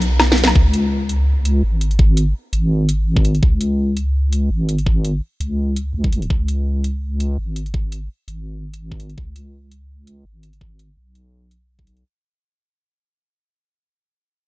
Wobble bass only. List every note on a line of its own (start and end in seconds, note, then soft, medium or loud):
0.00 0.54 B1 medium
0.55 1.62 C#2 loud
1.63 2.34 G#1 loud
2.53 3.41 G#1 loud
3.43 4.49 C#2 loud
4.50 5.21 G#1 loud
5.40 5.93 C#2 loud
5.94 6.29 C#2 medium
6.30 7.37 C#2 loud
7.38 8.08 G#1 loud
8.28 9.16 G#1 loud
9.18 10.24 C#2 medium
10.25 10.96 G#1 medium
10.97 12.04 B1 loud